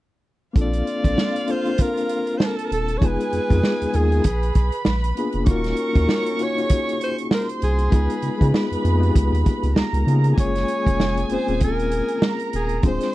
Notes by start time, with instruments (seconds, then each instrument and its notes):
0.53 sub bass A#1, reed electric piano A#3 C4 D4 F4 A4, violin section F4 F5, kick, closed hi-hat
0.61 alto saxophone D5
0.73 closed hi-hat
0.87 closed hi-hat
1.03 sub bass A1, reed electric piano A#3 C4 D4 F4 A4, kick, closed hi-hat
1.18 snare
1.36 closed hi-hat
1.46 reed electric piano A#3 C4 D4 F4 A4, closed hi-hat
1.51 alto saxophone C5
1.65 reed electric piano A#3 C4 D4 F4 A#4, closed hi-hat
1.75 reed electric piano C5, closed hi-hat
1.79 alto saxophone A#4, kick
1.97 closed hi-hat
2.09 closed hi-hat
2.27 closed hi-hat
2.38 violin section A4 A5, alto saxophone C5, snare
2.46 alto saxophone A#4
2.57 alto saxophone A4, closed hi-hat
2.65 alto saxophone A#4
2.72 sub bass D#1, alto saxophone A4, closed hi-hat
2.88 closed hi-hat
2.98 reed electric piano G#3 B3 D#4, violin section G#4 G#5, alto saxophone C#5, kick
3.02 sub bass F1, reed electric piano F4 G#4, alto saxophone B4, closed hi-hat
3.20 closed hi-hat
3.33 sub bass F2, closed hi-hat
3.48 sub bass F2, reed electric piano G#3 B3 D#4 F4 G#4, kick, closed hi-hat
3.63 snare
3.81 sub bass D#2, closed hi-hat
3.92 sub bass D#2, reed electric piano G#3 B3 D#4 F4 A#4, alto saxophone G#4, closed hi-hat
4.09 reed electric piano G#3 B3 D#4 F4 G#4, closed hi-hat
4.24 sub bass A#1, violin section B4 B5, kick, closed hi-hat
4.43 closed hi-hat
4.55 sub bass B1, kick, closed hi-hat
4.72 closed hi-hat
4.85 sub bass A#1, snare
5.04 closed hi-hat
5.15 reed electric piano A#3 B3 D4 F4 G#4, closed hi-hat
5.33 sub bass F1, closed hi-hat
5.45 sub bass D#1, reed electric piano A#3 C#4 D#4 F4 F#4, violin section C#4 C#6, kick, closed hi-hat
5.51 alto saxophone A#4
5.64 snare, closed hi-hat
5.77 closed hi-hat
5.93 sub bass D#2, reed electric piano A#3 C#4 D#4 F4, kick, closed hi-hat
5.97 reed electric piano F#4
6.09 snare
6.26 closed hi-hat
6.36 reed electric piano A#3 C#4 D#4 F4 F#4, closed hi-hat
6.43 alto saxophone C#5
6.55 reed electric piano A#3 C#4 D#4 F4 F#4, closed hi-hat
6.65 reed electric piano G#4
6.69 kick, closed hi-hat
6.89 closed hi-hat
7.01 alto saxophone C5, closed hi-hat
7.18 closed hi-hat
7.31 alto saxophone A#4, violin section C5 C6, snare
7.49 closed hi-hat
7.62 sub bass C2, alto saxophone G#4, closed hi-hat
7.79 closed hi-hat
7.89 sub bass C#2, reed electric piano G#3 B3 D#4 F4 G#4, violin section B4 B5, kick, closed hi-hat
8.10 closed hi-hat
8.22 sub bass C#3, closed hi-hat
8.38 sub bass C#3, reed electric piano G#3 B3 D#4 F4, kick
8.42 reed electric piano G#4, closed hi-hat
8.54 snare
8.71 sub bass F2, closed hi-hat
8.82 sub bass F2, reed electric piano A#3 B3 D#4 F4 G#4, closed hi-hat
8.98 reed electric piano G#3 B3 D#4 F4 G4
9.03 closed hi-hat
9.09 reed electric piano G#4
9.15 sub bass C#2, kick, closed hi-hat
9.33 sub bass D#2, closed hi-hat
9.46 kick, closed hi-hat
9.63 sub bass C#2, closed hi-hat
9.76 sub bass C#2, violin section A#4 A#5, snare
9.93 sub bass C#2, closed hi-hat
10.04 sub bass C#3, reed electric piano A#3 B3 D#4 F4 G#4, closed hi-hat
10.24 closed hi-hat
10.35 sub bass F#1, reed electric piano G#3 A#3 C#4 F4 G#4, violin section G#4 G#5, kick, closed hi-hat
10.40 alto saxophone C#5
10.55 snare, closed hi-hat
10.68 closed hi-hat
10.85 sub bass F1, reed electric piano G#3 A#3 C#4 F4 G#4, kick, closed hi-hat
11.00 snare
11.17 closed hi-hat
11.29 sub bass D#1, reed electric piano A#3 C4 C#4 F4 G#4, alto saxophone C5, closed hi-hat
11.47 sub bass D#1, reed electric piano A#3 C4 C#4 F4 G#4, closed hi-hat
11.60 alto saxophone A#4, kick, closed hi-hat
11.79 closed hi-hat
11.92 closed hi-hat
12.08 closed hi-hat
12.21 violin section A#4 A#5, snare
12.40 closed hi-hat
12.53 sub bass D#1, alto saxophone G#4, closed hi-hat
12.69 closed hi-hat
12.82 sub bass D1, reed electric piano G#3 C4 D4 F4 G#4, violin section C5 C6, kick, closed hi-hat
12.88 alto saxophone C5
13.01 snare, closed hi-hat